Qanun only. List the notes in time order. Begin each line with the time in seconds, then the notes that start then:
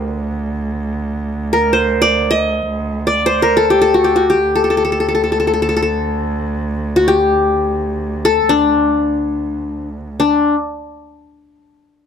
Already playing: A#4 C5 D5
1.53 A#4
1.73 C5
2.02 D5
2.31 D#5
3.07 D5
3.26 C5
3.42 A#4
3.57 A4
3.70 G4
3.82 A4
3.94 F#4
4.04 G4
4.16 F#4
4.30 G4
4.55 A4
4.64 A4
4.70 A4
4.77 A4
4.85 A4
4.92 A4
5.00 A4
5.08 A4
5.15 A4
5.24 A4
5.32 A4
5.40 A4
5.47 A4
5.54 A4
5.62 A4
5.69 A4
5.76 A4
5.82 A4
6.96 F#4
7.08 G4
8.25 A4
8.49 D4
10.20 D4